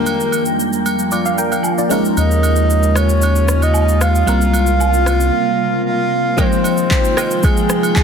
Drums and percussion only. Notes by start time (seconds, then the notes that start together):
0.06 high agogo, shaker
0.20 shaker
0.32 high agogo, shaker
0.46 shaker
0.60 shaker
0.73 shaker
0.86 high agogo, shaker
0.99 shaker
1.11 high agogo, shaker
1.26 shaker
1.38 shaker
1.52 high agogo, shaker
1.63 low woodblock, shaker
1.78 shaker
1.91 high agogo, shaker
2.05 shaker
2.17 high agogo, shaker
2.31 shaker
2.43 high agogo, shaker
2.56 shaker
2.70 shaker
2.83 shaker
2.96 cross-stick, high agogo, shaker
3.09 shaker
3.22 high agogo, shaker
3.36 shaker
3.48 cross-stick, shaker
3.62 high agogo, shaker
3.74 low woodblock, shaker
3.89 shaker
4.01 cross-stick, high agogo, shaker
4.15 shaker
4.27 high agogo, shaker
4.41 shaker
4.54 high agogo, shaker
4.67 shaker
4.80 low woodblock, shaker
4.94 shaker
5.06 cross-stick, high agogo, shaker
5.20 shaker
6.38 kick, high agogo, shaker
6.52 shaker
6.64 high agogo, shaker
6.77 shaker
6.91 kick, clap, shaker
7.05 shaker
7.17 cross-stick, high agogo, shaker
7.31 shaker
7.43 kick, high agogo, shaker
7.57 shaker
7.70 cross-stick, shaker
7.83 high agogo, shaker
7.95 kick, clap, low woodblock, shaker